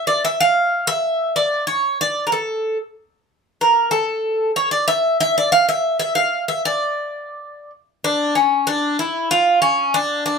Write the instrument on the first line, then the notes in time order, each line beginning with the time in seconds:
bouzouki
0.07 D5
0.25 E5
0.40 F5
0.87 E5
1.36 D5
1.67 C#5
2.01 D5
2.27 A#4
2.32 A4
3.61 A#4
3.91 A4
4.56 C#5
4.71 D5
4.88 E5
5.20 E5
5.38 D5
5.52 F5
5.69 E5
5.99 E5
6.15 F5
6.48 E5
6.65 D5
8.04 D4
8.35 C#4
8.67 D4
8.99 E4
9.31 F4
9.62 C#4
9.94 D4
10.26 D4